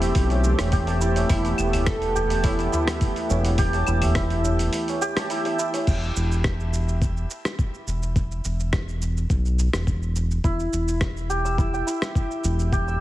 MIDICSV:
0, 0, Header, 1, 7, 480
1, 0, Start_track
1, 0, Key_signature, 1, "minor"
1, 0, Tempo, 571429
1, 1091, Time_signature, 4, 2, 24, 8
1, 10923, End_track
2, 0, Start_track
2, 0, Title_t, "Santur"
2, 0, Program_c, 0, 15
2, 0, Note_on_c, 0, 64, 74
2, 0, Note_on_c, 0, 67, 105
2, 0, Note_on_c, 0, 76, 76
2, 0, Note_on_c, 0, 81, 80
2, 605, Note_off_c, 0, 67, 0
2, 608, Note_on_c, 0, 67, 98
2, 732, Note_off_c, 0, 81, 0
2, 736, Note_on_c, 0, 81, 81
2, 845, Note_off_c, 0, 64, 0
2, 848, Note_on_c, 0, 64, 68
2, 973, Note_off_c, 0, 76, 0
2, 976, Note_on_c, 0, 76, 79
2, 1083, Note_off_c, 0, 64, 0
2, 1087, Note_on_c, 0, 64, 84
2, 1806, Note_off_c, 0, 67, 0
2, 1809, Note_on_c, 0, 67, 96
2, 1935, Note_off_c, 0, 81, 0
2, 1938, Note_on_c, 0, 81, 75
2, 2047, Note_off_c, 0, 64, 0
2, 2051, Note_on_c, 0, 64, 86
2, 2174, Note_off_c, 0, 76, 0
2, 2178, Note_on_c, 0, 76, 76
2, 2288, Note_off_c, 0, 64, 0
2, 2291, Note_on_c, 0, 64, 79
2, 3007, Note_off_c, 0, 67, 0
2, 3010, Note_on_c, 0, 67, 109
2, 3135, Note_off_c, 0, 81, 0
2, 3138, Note_on_c, 0, 81, 78
2, 3249, Note_off_c, 0, 64, 0
2, 3252, Note_on_c, 0, 64, 74
2, 3377, Note_off_c, 0, 76, 0
2, 3381, Note_on_c, 0, 76, 81
2, 3489, Note_off_c, 0, 64, 0
2, 3492, Note_on_c, 0, 64, 85
2, 4209, Note_off_c, 0, 67, 0
2, 4213, Note_on_c, 0, 67, 110
2, 4337, Note_off_c, 0, 81, 0
2, 4340, Note_on_c, 0, 81, 79
2, 4450, Note_off_c, 0, 64, 0
2, 4454, Note_on_c, 0, 64, 82
2, 4578, Note_off_c, 0, 76, 0
2, 4581, Note_on_c, 0, 76, 78
2, 4690, Note_off_c, 0, 64, 0
2, 4693, Note_on_c, 0, 64, 77
2, 5963, Note_off_c, 0, 81, 0
2, 6511, Note_off_c, 0, 76, 0
2, 6849, Note_off_c, 0, 67, 0
2, 7618, Note_off_c, 0, 64, 0
2, 8770, Note_on_c, 0, 64, 84
2, 9489, Note_on_c, 0, 67, 88
2, 9616, Note_on_c, 0, 88, 78
2, 9725, Note_off_c, 0, 64, 0
2, 9728, Note_on_c, 0, 64, 78
2, 9858, Note_on_c, 0, 79, 72
2, 9965, Note_off_c, 0, 64, 0
2, 9969, Note_on_c, 0, 64, 72
2, 10686, Note_off_c, 0, 67, 0
2, 10689, Note_on_c, 0, 67, 97
2, 10814, Note_off_c, 0, 88, 0
2, 10818, Note_on_c, 0, 88, 69
2, 10923, Note_off_c, 0, 64, 0
2, 10923, Note_off_c, 0, 67, 0
2, 10923, Note_off_c, 0, 79, 0
2, 10923, Note_off_c, 0, 88, 0
2, 10923, End_track
3, 0, Start_track
3, 0, Title_t, "Oud"
3, 0, Program_c, 1, 24
3, 1090, Note_on_c, 1, 64, 104
3, 1563, Note_off_c, 1, 64, 0
3, 1566, Note_on_c, 1, 69, 109
3, 2015, Note_off_c, 1, 69, 0
3, 2046, Note_on_c, 1, 64, 94
3, 4415, Note_off_c, 1, 64, 0
3, 10923, End_track
4, 0, Start_track
4, 0, Title_t, "Analog synth pad"
4, 0, Program_c, 2, 89
4, 0, Note_on_c, 2, 52, 80
4, 0, Note_on_c, 2, 57, 76
4, 0, Note_on_c, 2, 60, 78
4, 0, Note_on_c, 2, 67, 91
4, 1059, Note_off_c, 2, 60, 0
4, 1088, Note_on_c, 2, 59, 78
4, 4896, Note_off_c, 2, 59, 0
4, 4898, Note_off_c, 2, 57, 0
4, 4899, Note_off_c, 2, 52, 0
4, 4899, Note_off_c, 2, 67, 0
4, 10923, End_track
5, 0, Start_track
5, 0, Title_t, "Analog synth bass"
5, 0, Program_c, 3, 38
5, 0, Note_on_c, 3, 28, 87
5, 95, Note_off_c, 3, 28, 0
5, 131, Note_on_c, 3, 35, 90
5, 458, Note_off_c, 3, 35, 0
5, 497, Note_on_c, 3, 28, 86
5, 1054, Note_off_c, 3, 28, 0
5, 1091, Note_on_c, 3, 28, 98
5, 1286, Note_off_c, 3, 28, 0
5, 1333, Note_on_c, 3, 28, 85
5, 2256, Note_off_c, 3, 28, 0
5, 2771, Note_on_c, 3, 28, 94
5, 3215, Note_off_c, 3, 28, 0
5, 3252, Note_on_c, 3, 28, 90
5, 3936, Note_off_c, 3, 28, 0
5, 4935, Note_on_c, 3, 28, 91
5, 5128, Note_off_c, 3, 28, 0
5, 5174, Note_on_c, 3, 28, 82
5, 6097, Note_off_c, 3, 28, 0
5, 6612, Note_on_c, 3, 28, 91
5, 7056, Note_off_c, 3, 28, 0
5, 7094, Note_on_c, 3, 28, 83
5, 7777, Note_off_c, 3, 28, 0
5, 7812, Note_on_c, 3, 35, 84
5, 8138, Note_off_c, 3, 35, 0
5, 8178, Note_on_c, 3, 28, 86
5, 8735, Note_off_c, 3, 28, 0
5, 8773, Note_on_c, 3, 28, 100
5, 8967, Note_off_c, 3, 28, 0
5, 9011, Note_on_c, 3, 28, 82
5, 9935, Note_off_c, 3, 28, 0
5, 10449, Note_on_c, 3, 28, 92
5, 10894, Note_off_c, 3, 28, 0
5, 10923, End_track
6, 0, Start_track
6, 0, Title_t, "Tabla"
6, 262, Note_on_c, 9, 60, 78
6, 346, Note_off_c, 9, 60, 0
6, 502, Note_on_c, 9, 60, 82
6, 586, Note_off_c, 9, 60, 0
6, 734, Note_on_c, 9, 63, 32
6, 818, Note_off_c, 9, 63, 0
6, 973, Note_on_c, 9, 63, 70
6, 976, Note_on_c, 9, 60, 84
6, 1057, Note_off_c, 9, 63, 0
6, 1060, Note_off_c, 9, 60, 0
6, 1217, Note_on_c, 9, 60, 66
6, 1301, Note_off_c, 9, 60, 0
6, 1458, Note_on_c, 9, 64, 78
6, 1463, Note_on_c, 9, 60, 62
6, 1542, Note_off_c, 9, 64, 0
6, 1547, Note_off_c, 9, 60, 0
6, 1813, Note_on_c, 9, 64, 80
6, 1897, Note_off_c, 9, 64, 0
6, 2049, Note_on_c, 9, 60, 85
6, 2133, Note_off_c, 9, 60, 0
6, 2295, Note_on_c, 9, 64, 86
6, 2379, Note_off_c, 9, 64, 0
6, 2660, Note_on_c, 9, 63, 41
6, 2744, Note_off_c, 9, 63, 0
6, 2777, Note_on_c, 9, 60, 77
6, 2861, Note_off_c, 9, 60, 0
6, 2901, Note_on_c, 9, 63, 64
6, 2985, Note_off_c, 9, 63, 0
6, 3144, Note_on_c, 9, 60, 72
6, 3228, Note_off_c, 9, 60, 0
6, 3250, Note_on_c, 9, 63, 52
6, 3334, Note_off_c, 9, 63, 0
6, 3379, Note_on_c, 9, 64, 95
6, 3381, Note_on_c, 9, 60, 70
6, 3463, Note_off_c, 9, 64, 0
6, 3465, Note_off_c, 9, 60, 0
6, 3729, Note_on_c, 9, 63, 69
6, 3737, Note_on_c, 9, 64, 91
6, 3813, Note_off_c, 9, 63, 0
6, 3821, Note_off_c, 9, 64, 0
6, 4111, Note_on_c, 9, 60, 82
6, 4195, Note_off_c, 9, 60, 0
6, 4344, Note_on_c, 9, 60, 77
6, 4428, Note_off_c, 9, 60, 0
6, 4584, Note_on_c, 9, 63, 39
6, 4668, Note_off_c, 9, 63, 0
6, 4820, Note_on_c, 9, 60, 75
6, 4822, Note_on_c, 9, 63, 65
6, 4904, Note_off_c, 9, 60, 0
6, 4906, Note_off_c, 9, 63, 0
6, 10923, End_track
7, 0, Start_track
7, 0, Title_t, "Drums"
7, 14, Note_on_c, 9, 46, 45
7, 20, Note_on_c, 9, 82, 32
7, 98, Note_off_c, 9, 46, 0
7, 104, Note_off_c, 9, 82, 0
7, 125, Note_on_c, 9, 46, 59
7, 130, Note_on_c, 9, 36, 102
7, 131, Note_on_c, 9, 82, 43
7, 209, Note_off_c, 9, 46, 0
7, 214, Note_off_c, 9, 36, 0
7, 215, Note_off_c, 9, 82, 0
7, 253, Note_on_c, 9, 46, 29
7, 258, Note_on_c, 9, 82, 21
7, 337, Note_off_c, 9, 46, 0
7, 342, Note_off_c, 9, 82, 0
7, 369, Note_on_c, 9, 82, 76
7, 453, Note_off_c, 9, 82, 0
7, 493, Note_on_c, 9, 37, 71
7, 493, Note_on_c, 9, 46, 45
7, 498, Note_on_c, 9, 82, 31
7, 577, Note_off_c, 9, 37, 0
7, 577, Note_off_c, 9, 46, 0
7, 582, Note_off_c, 9, 82, 0
7, 605, Note_on_c, 9, 46, 55
7, 610, Note_on_c, 9, 36, 102
7, 610, Note_on_c, 9, 82, 44
7, 689, Note_off_c, 9, 46, 0
7, 694, Note_off_c, 9, 36, 0
7, 694, Note_off_c, 9, 82, 0
7, 733, Note_on_c, 9, 46, 32
7, 738, Note_on_c, 9, 82, 21
7, 817, Note_off_c, 9, 46, 0
7, 822, Note_off_c, 9, 82, 0
7, 851, Note_on_c, 9, 82, 73
7, 935, Note_off_c, 9, 82, 0
7, 975, Note_on_c, 9, 46, 45
7, 980, Note_on_c, 9, 82, 36
7, 1059, Note_off_c, 9, 46, 0
7, 1064, Note_off_c, 9, 82, 0
7, 1088, Note_on_c, 9, 46, 59
7, 1090, Note_on_c, 9, 36, 104
7, 1093, Note_on_c, 9, 82, 43
7, 1172, Note_off_c, 9, 46, 0
7, 1174, Note_off_c, 9, 36, 0
7, 1177, Note_off_c, 9, 82, 0
7, 1216, Note_on_c, 9, 46, 33
7, 1222, Note_on_c, 9, 82, 21
7, 1300, Note_off_c, 9, 46, 0
7, 1306, Note_off_c, 9, 82, 0
7, 1327, Note_on_c, 9, 75, 86
7, 1332, Note_on_c, 9, 82, 83
7, 1411, Note_off_c, 9, 75, 0
7, 1416, Note_off_c, 9, 82, 0
7, 1456, Note_on_c, 9, 46, 44
7, 1456, Note_on_c, 9, 75, 61
7, 1461, Note_on_c, 9, 82, 32
7, 1540, Note_off_c, 9, 46, 0
7, 1540, Note_off_c, 9, 75, 0
7, 1545, Note_off_c, 9, 82, 0
7, 1567, Note_on_c, 9, 37, 74
7, 1567, Note_on_c, 9, 46, 56
7, 1570, Note_on_c, 9, 36, 95
7, 1572, Note_on_c, 9, 82, 43
7, 1651, Note_off_c, 9, 37, 0
7, 1651, Note_off_c, 9, 46, 0
7, 1654, Note_off_c, 9, 36, 0
7, 1656, Note_off_c, 9, 82, 0
7, 1695, Note_on_c, 9, 46, 31
7, 1700, Note_on_c, 9, 82, 20
7, 1779, Note_off_c, 9, 46, 0
7, 1784, Note_off_c, 9, 82, 0
7, 1813, Note_on_c, 9, 82, 71
7, 1897, Note_off_c, 9, 82, 0
7, 1935, Note_on_c, 9, 46, 49
7, 1940, Note_on_c, 9, 82, 32
7, 2019, Note_off_c, 9, 46, 0
7, 2024, Note_off_c, 9, 82, 0
7, 2047, Note_on_c, 9, 46, 60
7, 2051, Note_on_c, 9, 36, 102
7, 2052, Note_on_c, 9, 82, 44
7, 2131, Note_off_c, 9, 46, 0
7, 2135, Note_off_c, 9, 36, 0
7, 2136, Note_off_c, 9, 82, 0
7, 2175, Note_on_c, 9, 46, 31
7, 2180, Note_on_c, 9, 82, 22
7, 2259, Note_off_c, 9, 46, 0
7, 2264, Note_off_c, 9, 82, 0
7, 2293, Note_on_c, 9, 82, 74
7, 2377, Note_off_c, 9, 82, 0
7, 2415, Note_on_c, 9, 37, 81
7, 2415, Note_on_c, 9, 46, 50
7, 2420, Note_on_c, 9, 82, 32
7, 2499, Note_off_c, 9, 37, 0
7, 2499, Note_off_c, 9, 46, 0
7, 2504, Note_off_c, 9, 82, 0
7, 2528, Note_on_c, 9, 46, 58
7, 2531, Note_on_c, 9, 36, 103
7, 2533, Note_on_c, 9, 82, 42
7, 2612, Note_off_c, 9, 46, 0
7, 2615, Note_off_c, 9, 36, 0
7, 2617, Note_off_c, 9, 82, 0
7, 2656, Note_on_c, 9, 46, 32
7, 2661, Note_on_c, 9, 82, 22
7, 2740, Note_off_c, 9, 46, 0
7, 2745, Note_off_c, 9, 82, 0
7, 2771, Note_on_c, 9, 82, 78
7, 2855, Note_off_c, 9, 82, 0
7, 2894, Note_on_c, 9, 46, 51
7, 2899, Note_on_c, 9, 82, 33
7, 2978, Note_off_c, 9, 46, 0
7, 2983, Note_off_c, 9, 82, 0
7, 3007, Note_on_c, 9, 46, 59
7, 3012, Note_on_c, 9, 36, 110
7, 3012, Note_on_c, 9, 82, 42
7, 3091, Note_off_c, 9, 46, 0
7, 3096, Note_off_c, 9, 36, 0
7, 3096, Note_off_c, 9, 82, 0
7, 3135, Note_on_c, 9, 46, 33
7, 3140, Note_on_c, 9, 82, 22
7, 3219, Note_off_c, 9, 46, 0
7, 3224, Note_off_c, 9, 82, 0
7, 3247, Note_on_c, 9, 75, 89
7, 3252, Note_on_c, 9, 82, 81
7, 3331, Note_off_c, 9, 75, 0
7, 3336, Note_off_c, 9, 82, 0
7, 3373, Note_on_c, 9, 46, 49
7, 3373, Note_on_c, 9, 75, 63
7, 3378, Note_on_c, 9, 82, 33
7, 3457, Note_off_c, 9, 46, 0
7, 3457, Note_off_c, 9, 75, 0
7, 3462, Note_off_c, 9, 82, 0
7, 3487, Note_on_c, 9, 37, 74
7, 3487, Note_on_c, 9, 46, 55
7, 3492, Note_on_c, 9, 36, 110
7, 3492, Note_on_c, 9, 82, 40
7, 3571, Note_off_c, 9, 37, 0
7, 3571, Note_off_c, 9, 46, 0
7, 3576, Note_off_c, 9, 36, 0
7, 3576, Note_off_c, 9, 82, 0
7, 3615, Note_on_c, 9, 46, 31
7, 3620, Note_on_c, 9, 82, 20
7, 3699, Note_off_c, 9, 46, 0
7, 3704, Note_off_c, 9, 82, 0
7, 3733, Note_on_c, 9, 82, 81
7, 3817, Note_off_c, 9, 82, 0
7, 3858, Note_on_c, 9, 46, 47
7, 3863, Note_on_c, 9, 82, 34
7, 3942, Note_off_c, 9, 46, 0
7, 3947, Note_off_c, 9, 82, 0
7, 3970, Note_on_c, 9, 46, 57
7, 3975, Note_on_c, 9, 82, 44
7, 4054, Note_off_c, 9, 46, 0
7, 4059, Note_off_c, 9, 82, 0
7, 4099, Note_on_c, 9, 46, 33
7, 4104, Note_on_c, 9, 82, 23
7, 4183, Note_off_c, 9, 46, 0
7, 4188, Note_off_c, 9, 82, 0
7, 4216, Note_on_c, 9, 82, 78
7, 4300, Note_off_c, 9, 82, 0
7, 4340, Note_on_c, 9, 37, 82
7, 4340, Note_on_c, 9, 46, 50
7, 4345, Note_on_c, 9, 82, 32
7, 4424, Note_off_c, 9, 37, 0
7, 4424, Note_off_c, 9, 46, 0
7, 4429, Note_off_c, 9, 82, 0
7, 4452, Note_on_c, 9, 46, 60
7, 4457, Note_on_c, 9, 82, 42
7, 4536, Note_off_c, 9, 46, 0
7, 4541, Note_off_c, 9, 82, 0
7, 4579, Note_on_c, 9, 46, 32
7, 4584, Note_on_c, 9, 82, 21
7, 4663, Note_off_c, 9, 46, 0
7, 4668, Note_off_c, 9, 82, 0
7, 4696, Note_on_c, 9, 82, 75
7, 4780, Note_off_c, 9, 82, 0
7, 4820, Note_on_c, 9, 46, 47
7, 4825, Note_on_c, 9, 82, 34
7, 4904, Note_off_c, 9, 46, 0
7, 4909, Note_off_c, 9, 82, 0
7, 4932, Note_on_c, 9, 49, 83
7, 4934, Note_on_c, 9, 36, 94
7, 4938, Note_on_c, 9, 82, 41
7, 5016, Note_off_c, 9, 49, 0
7, 5018, Note_off_c, 9, 36, 0
7, 5022, Note_off_c, 9, 82, 0
7, 5066, Note_on_c, 9, 82, 21
7, 5150, Note_off_c, 9, 82, 0
7, 5177, Note_on_c, 9, 82, 75
7, 5261, Note_off_c, 9, 82, 0
7, 5306, Note_on_c, 9, 82, 32
7, 5390, Note_off_c, 9, 82, 0
7, 5412, Note_on_c, 9, 37, 78
7, 5414, Note_on_c, 9, 36, 105
7, 5417, Note_on_c, 9, 82, 40
7, 5496, Note_off_c, 9, 37, 0
7, 5498, Note_off_c, 9, 36, 0
7, 5501, Note_off_c, 9, 82, 0
7, 5545, Note_on_c, 9, 82, 19
7, 5629, Note_off_c, 9, 82, 0
7, 5656, Note_on_c, 9, 82, 76
7, 5740, Note_off_c, 9, 82, 0
7, 5783, Note_on_c, 9, 82, 32
7, 5867, Note_off_c, 9, 82, 0
7, 5894, Note_on_c, 9, 36, 102
7, 5896, Note_on_c, 9, 82, 41
7, 5978, Note_off_c, 9, 36, 0
7, 5980, Note_off_c, 9, 82, 0
7, 6024, Note_on_c, 9, 82, 21
7, 6108, Note_off_c, 9, 82, 0
7, 6136, Note_on_c, 9, 82, 73
7, 6220, Note_off_c, 9, 82, 0
7, 6260, Note_on_c, 9, 37, 79
7, 6265, Note_on_c, 9, 82, 32
7, 6344, Note_off_c, 9, 37, 0
7, 6349, Note_off_c, 9, 82, 0
7, 6373, Note_on_c, 9, 36, 98
7, 6376, Note_on_c, 9, 82, 43
7, 6457, Note_off_c, 9, 36, 0
7, 6460, Note_off_c, 9, 82, 0
7, 6504, Note_on_c, 9, 82, 20
7, 6588, Note_off_c, 9, 82, 0
7, 6615, Note_on_c, 9, 82, 73
7, 6699, Note_off_c, 9, 82, 0
7, 6742, Note_on_c, 9, 82, 30
7, 6826, Note_off_c, 9, 82, 0
7, 6853, Note_on_c, 9, 36, 96
7, 6854, Note_on_c, 9, 82, 43
7, 6937, Note_off_c, 9, 36, 0
7, 6938, Note_off_c, 9, 82, 0
7, 6984, Note_on_c, 9, 82, 22
7, 7068, Note_off_c, 9, 82, 0
7, 7094, Note_on_c, 9, 82, 81
7, 7178, Note_off_c, 9, 82, 0
7, 7223, Note_on_c, 9, 82, 33
7, 7307, Note_off_c, 9, 82, 0
7, 7331, Note_on_c, 9, 37, 79
7, 7333, Note_on_c, 9, 36, 106
7, 7336, Note_on_c, 9, 82, 43
7, 7415, Note_off_c, 9, 37, 0
7, 7417, Note_off_c, 9, 36, 0
7, 7420, Note_off_c, 9, 82, 0
7, 7464, Note_on_c, 9, 82, 20
7, 7548, Note_off_c, 9, 82, 0
7, 7576, Note_on_c, 9, 82, 75
7, 7660, Note_off_c, 9, 82, 0
7, 7704, Note_on_c, 9, 82, 32
7, 7788, Note_off_c, 9, 82, 0
7, 7812, Note_on_c, 9, 36, 103
7, 7814, Note_on_c, 9, 82, 42
7, 7896, Note_off_c, 9, 36, 0
7, 7898, Note_off_c, 9, 82, 0
7, 7942, Note_on_c, 9, 82, 21
7, 8026, Note_off_c, 9, 82, 0
7, 8054, Note_on_c, 9, 82, 74
7, 8138, Note_off_c, 9, 82, 0
7, 8177, Note_on_c, 9, 37, 78
7, 8182, Note_on_c, 9, 82, 33
7, 8261, Note_off_c, 9, 37, 0
7, 8266, Note_off_c, 9, 82, 0
7, 8292, Note_on_c, 9, 36, 105
7, 8293, Note_on_c, 9, 82, 42
7, 8376, Note_off_c, 9, 36, 0
7, 8377, Note_off_c, 9, 82, 0
7, 8421, Note_on_c, 9, 82, 21
7, 8505, Note_off_c, 9, 82, 0
7, 8533, Note_on_c, 9, 82, 79
7, 8617, Note_off_c, 9, 82, 0
7, 8661, Note_on_c, 9, 82, 33
7, 8745, Note_off_c, 9, 82, 0
7, 8771, Note_on_c, 9, 36, 104
7, 8774, Note_on_c, 9, 82, 40
7, 8855, Note_off_c, 9, 36, 0
7, 8858, Note_off_c, 9, 82, 0
7, 8900, Note_on_c, 9, 82, 21
7, 8984, Note_off_c, 9, 82, 0
7, 9013, Note_on_c, 9, 82, 78
7, 9097, Note_off_c, 9, 82, 0
7, 9139, Note_on_c, 9, 82, 35
7, 9223, Note_off_c, 9, 82, 0
7, 9247, Note_on_c, 9, 37, 74
7, 9251, Note_on_c, 9, 36, 102
7, 9252, Note_on_c, 9, 82, 41
7, 9331, Note_off_c, 9, 37, 0
7, 9335, Note_off_c, 9, 36, 0
7, 9336, Note_off_c, 9, 82, 0
7, 9381, Note_on_c, 9, 82, 21
7, 9465, Note_off_c, 9, 82, 0
7, 9494, Note_on_c, 9, 82, 78
7, 9578, Note_off_c, 9, 82, 0
7, 9622, Note_on_c, 9, 82, 34
7, 9706, Note_off_c, 9, 82, 0
7, 9730, Note_on_c, 9, 36, 104
7, 9736, Note_on_c, 9, 82, 43
7, 9814, Note_off_c, 9, 36, 0
7, 9820, Note_off_c, 9, 82, 0
7, 9863, Note_on_c, 9, 82, 21
7, 9947, Note_off_c, 9, 82, 0
7, 9976, Note_on_c, 9, 82, 75
7, 10060, Note_off_c, 9, 82, 0
7, 10097, Note_on_c, 9, 37, 76
7, 10102, Note_on_c, 9, 82, 32
7, 10181, Note_off_c, 9, 37, 0
7, 10186, Note_off_c, 9, 82, 0
7, 10210, Note_on_c, 9, 36, 105
7, 10213, Note_on_c, 9, 82, 44
7, 10294, Note_off_c, 9, 36, 0
7, 10297, Note_off_c, 9, 82, 0
7, 10341, Note_on_c, 9, 82, 22
7, 10425, Note_off_c, 9, 82, 0
7, 10451, Note_on_c, 9, 82, 76
7, 10535, Note_off_c, 9, 82, 0
7, 10579, Note_on_c, 9, 82, 35
7, 10663, Note_off_c, 9, 82, 0
7, 10690, Note_on_c, 9, 36, 106
7, 10692, Note_on_c, 9, 82, 41
7, 10774, Note_off_c, 9, 36, 0
7, 10776, Note_off_c, 9, 82, 0
7, 10819, Note_on_c, 9, 82, 22
7, 10903, Note_off_c, 9, 82, 0
7, 10923, End_track
0, 0, End_of_file